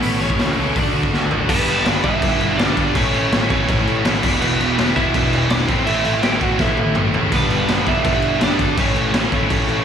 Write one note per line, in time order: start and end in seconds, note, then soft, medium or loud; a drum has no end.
0.00 0.20 A1 loud
0.00 0.56 A2 medium
0.00 0.19 A2 medium
0.00 0.57 E3 medium
0.00 0.19 E3 loud
0.00 0.56 A3 loud
0.00 0.20 A3 loud
0.00 0.20 B3 medium
0.00 0.20 C#4 loud
0.00 0.21 E4 loud
0.00 0.20 B4 medium
0.00 open hi-hat medium
0.18 0.39 A1 medium
0.18 0.38 A2 medium
0.18 0.38 E3 medium
0.18 0.39 A3 medium
0.18 0.75 C#4 loud
0.18 0.39 C#4 loud
0.18 0.40 E4 medium
0.18 0.72 C#5 medium
0.30 kick medium
0.39 0.57 D2 medium
0.39 0.57 A2 medium
0.39 0.58 E3 loud
0.39 0.58 A3 loud
0.39 0.58 C#4 loud
0.39 0.58 E4 loud
0.39 snare loud
0.39 open hi-hat medium
0.58 0.75 C#2 medium
0.58 0.75 A2 medium
0.58 0.75 E3 medium
0.58 0.75 A3 medium
0.58 0.76 C#4 medium
0.58 0.76 E4 medium
0.76 0.94 D2 medium
0.76 0.93 D3 medium
0.76 0.93 A3 loud
0.76 0.93 D4 medium
0.76 0.94 F#4 loud
0.76 kick loud
0.76 open hi-hat medium
0.94 1.12 D2 medium
0.94 1.11 D3 loud
0.94 1.11 A3 loud
0.94 1.12 D4 loud
0.94 1.12 F#4 loud
1.03 kick medium
1.12 1.30 D2 medium
1.12 1.30 D3 medium
1.12 1.30 A3 medium
1.12 1.30 D4 medium
1.12 1.31 F#4 medium
1.12 snare medium
1.30 1.48 A1 medium
1.30 1.48 D3 medium
1.30 1.48 A3 medium
1.30 1.48 D4 medium
1.30 1.49 F#4 medium
1.30 floor tom loud
1.48 1.64 G1 loud
1.48 1.85 G2 medium
1.48 1.85 D3 loud
1.48 1.86 G3 loud
1.48 1.86 B3 loud
1.48 2.01 B3 medium
1.48 1.86 D4 loud
1.48 2.01 B4 medium
1.48 kick loud
1.48 crash loud
1.67 1.83 G1 loud
1.67 crash medium
1.85 2.01 G1 loud
1.85 2.03 G2 medium
1.85 2.03 D3 medium
1.85 2.03 G3 medium
1.85 2.03 B3 medium
1.85 2.04 D4 medium
1.85 snare loud
1.85 crash loud
2.04 2.20 G1 loud
2.04 2.22 G2 medium
2.04 2.22 D3 medium
2.04 2.23 G3 loud
2.04 2.23 B3 medium
2.04 2.23 D4 loud
2.04 2.55 E4 medium
2.04 2.61 E5 loud
2.04 kick loud
2.04 crash medium
2.22 2.53 G1 loud
2.22 2.58 G2 medium
2.22 2.58 D3 loud
2.22 2.58 G3 loud
2.22 2.58 B3 loud
2.22 2.58 D4 loud
2.22 kick loud
2.22 crash loud
2.40 crash medium
2.58 2.74 G1 loud
2.58 2.76 G2 medium
2.58 2.76 D3 medium
2.58 2.76 G3 medium
2.58 2.77 B3 medium
2.58 2.92 D4 medium
2.58 2.77 D4 loud
2.58 2.92 D5 medium
2.58 snare loud
2.58 crash medium
2.77 2.93 G1 medium
2.77 2.94 G2 medium
2.77 2.94 D3 medium
2.77 2.94 G3 medium
2.77 2.95 B3 medium
2.77 2.95 D4 medium
2.77 kick loud
2.77 crash medium
2.95 3.11 A1 loud
2.95 3.31 A2 loud
2.95 3.32 E3 loud
2.95 3.31 A3 loud
2.95 3.46 C#4 medium
2.95 3.32 C#4 loud
2.95 3.33 E4 loud
2.95 3.49 C#5 medium
2.95 kick loud
2.95 crash loud
3.13 3.29 A1 loud
3.13 crash medium
3.32 3.48 A1 loud
3.32 3.49 A2 medium
3.32 3.50 E3 medium
3.32 3.50 A3 loud
3.32 3.50 C#4 medium
3.32 3.51 E4 loud
3.32 snare loud
3.32 crash medium
3.50 3.66 A1 loud
3.50 3.67 A2 medium
3.50 3.68 E3 medium
3.50 3.68 A3 medium
3.50 4.20 C#4 medium
3.50 3.69 C#4 loud
3.50 3.70 E4 loud
3.50 4.19 C#5 loud
3.50 kick medium
3.50 crash medium
3.68 3.84 A1 loud
3.68 4.03 A2 medium
3.68 4.05 E3 loud
3.68 4.04 A3 loud
3.68 4.04 C#4 loud
3.68 4.05 E4 loud
3.68 kick loud
3.68 crash medium
3.87 4.02 A1 loud
3.87 crash medium
4.05 4.20 A1 medium
4.05 4.22 A2 medium
4.05 4.23 E3 medium
4.05 4.22 A3 loud
4.05 4.22 C#4 medium
4.05 4.24 E4 loud
4.05 snare loud
4.05 crash medium
4.23 4.39 E1 loud
4.23 4.41 E2 loud
4.23 4.41 B2 loud
4.23 4.41 E3 loud
4.23 4.41 G3 loud
4.23 4.41 B3 loud
4.23 4.42 E4 loud
4.23 kick loud
4.23 crash loud
4.41 4.57 E1 loud
4.41 4.77 E2 loud
4.41 4.78 B2 loud
4.41 4.78 E3 loud
4.41 4.77 G3 loud
4.41 4.92 B3 medium
4.41 4.77 B3 loud
4.41 4.78 E4 loud
4.41 4.92 B4 medium
4.41 crash loud
4.59 4.75 E1 loud
4.59 crash medium
4.78 4.94 E1 loud
4.78 4.95 E2 medium
4.78 4.96 B2 loud
4.78 4.96 E3 medium
4.78 4.96 G3 medium
4.78 4.96 B3 medium
4.78 4.97 E4 loud
4.78 snare loud
4.78 crash medium
4.96 5.12 E1 loud
4.96 5.13 E2 medium
4.96 5.14 B2 medium
4.96 5.13 E3 medium
4.96 5.13 G3 loud
4.96 5.14 B3 loud
4.96 5.47 E4 medium
4.96 5.14 E4 loud
4.96 5.47 E5 loud
4.96 kick medium
4.96 crash medium
5.14 5.45 E1 loud
5.14 5.50 E2 medium
5.14 5.50 B2 medium
5.14 5.50 E3 loud
5.14 5.50 G3 loud
5.14 5.51 B3 loud
5.14 5.51 E4 loud
5.14 kick loud
5.14 crash medium
5.33 crash medium
5.50 5.66 E1 medium
5.50 5.68 E2 medium
5.50 5.68 B2 loud
5.50 5.68 E3 medium
5.50 5.68 G3 medium
5.50 5.68 B3 loud
5.50 5.68 D4 medium
5.50 5.68 E4 loud
5.50 5.67 D5 loud
5.50 snare loud
5.50 crash loud
5.67 5.84 A1 medium
5.67 5.85 A2 medium
5.67 5.86 E3 medium
5.67 5.86 A3 loud
5.67 5.85 C4 medium
5.67 5.86 C4 loud
5.67 5.86 E4 loud
5.67 5.87 C5 medium
5.67 kick loud
5.67 crash medium
5.86 6.03 A1 loud
5.86 6.22 A2 loud
5.86 6.22 E3 loud
5.86 6.23 A3 loud
5.86 6.23 C4 loud
5.86 6.04 E4 medium
5.86 6.23 E4 loud
5.86 6.04 E5 loud
5.86 crash loud
6.05 6.20 A1 loud
6.05 6.23 E4 medium
6.05 6.23 E5 loud
6.05 crash medium
6.23 6.38 A1 medium
6.23 6.41 A2 medium
6.23 6.41 E3 medium
6.23 6.41 A3 medium
6.23 6.42 C4 medium
6.23 6.42 E4 medium
6.23 6.41 G4 medium
6.23 6.42 G5 loud
6.23 snare loud
6.23 crash medium
6.41 6.57 A1 loud
6.41 6.59 A2 medium
6.41 6.59 E3 medium
6.41 6.59 A3 medium
6.41 6.60 C4 loud
6.41 6.60 E4 loud
6.41 6.59 F#4 medium
6.41 6.60 F#5 loud
6.41 kick medium
6.41 crash medium
6.59 6.75 A1 medium
6.59 6.94 A2 loud
6.59 6.95 E3 loud
6.59 6.95 A3 loud
6.59 6.96 C4 loud
6.59 6.94 E4 medium
6.59 6.95 E4 loud
6.59 6.97 E5 medium
6.59 kick loud
6.59 snare medium
6.76 6.92 A1 medium
6.76 high tom medium
6.95 7.11 A1 loud
6.95 7.13 A2 medium
6.95 7.13 E3 medium
6.95 7.13 A3 medium
6.95 7.14 C4 medium
6.95 7.14 E4 loud
6.95 mid tom loud
7.14 7.30 A1 medium
7.14 7.31 A2 medium
7.14 7.31 E3 medium
7.14 7.32 A3 medium
7.14 7.32 C4 medium
7.14 7.32 E4 medium
7.14 floor tom loud
7.32 7.48 G1 loud
7.32 7.67 G2 medium
7.32 7.67 D3 medium
7.32 7.68 G3 loud
7.32 7.68 B3 loud
7.32 7.84 B3 medium
7.32 7.69 D4 loud
7.32 7.90 B4 medium
7.32 kick loud
7.32 splash medium
7.32 crash medium
7.50 7.66 G1 loud
7.50 crash medium
7.68 7.84 G1 loud
7.68 7.86 G2 medium
7.68 7.86 D3 medium
7.68 7.87 G3 medium
7.68 7.87 B3 medium
7.68 7.87 D4 loud
7.68 snare loud
7.68 crash medium
7.87 8.02 G1 loud
7.87 8.04 G2 medium
7.87 8.04 D3 loud
7.87 8.05 G3 medium
7.87 8.05 B3 loud
7.87 8.05 D4 loud
7.87 8.38 E4 medium
7.87 8.39 E5 loud
7.87 kick medium
7.87 crash medium
8.05 8.36 G1 loud
8.05 8.39 G2 loud
8.05 8.39 D3 loud
8.05 8.40 G3 loud
8.05 8.40 B3 loud
8.05 8.40 D4 loud
8.05 kick loud
8.05 crash medium
8.22 crash medium
8.40 8.57 G1 loud
8.40 8.58 G2 medium
8.40 8.58 D3 medium
8.40 8.59 G3 loud
8.40 8.59 B3 medium
8.40 8.59 D4 loud
8.40 8.76 D4 medium
8.40 8.76 D5 medium
8.40 snare loud
8.40 crash loud
8.59 8.75 G#1 medium
8.59 8.77 G2 medium
8.59 8.77 D3 medium
8.59 8.77 G3 loud
8.59 8.77 B3 medium
8.59 8.77 D4 medium
8.59 kick loud
8.59 crash medium
8.77 8.93 A1 loud
8.77 9.14 A2 loud
8.77 9.15 E3 loud
8.77 9.14 A3 loud
8.77 9.14 C#4 loud
8.77 9.29 C#4 medium
8.77 9.16 E4 loud
8.77 9.33 C#5 loud
8.77 kick loud
8.77 crash loud
8.95 9.11 A1 loud
8.95 crash medium
9.13 9.29 A1 loud
9.13 9.31 A2 medium
9.13 9.32 E3 medium
9.13 9.32 A3 loud
9.13 9.32 C#4 loud
9.13 9.32 E4 loud
9.13 snare loud
9.13 crash medium
9.32 9.48 A1 loud
9.32 9.49 A2 medium
9.32 9.50 E3 loud
9.32 9.50 A3 loud
9.32 9.51 C#4 medium
9.32 9.85 C#4 medium
9.32 9.51 E4 loud
9.32 9.85 C#5 medium
9.32 kick medium
9.32 crash medium
9.50 9.66 A1 loud
9.50 9.85 A2 loud
9.50 9.85 E3 loud
9.50 9.85 A3 loud
9.50 9.85 C#4 loud
9.50 9.85 E4 loud
9.50 kick loud
9.50 crash medium
9.68 9.84 A1 medium
9.68 crash medium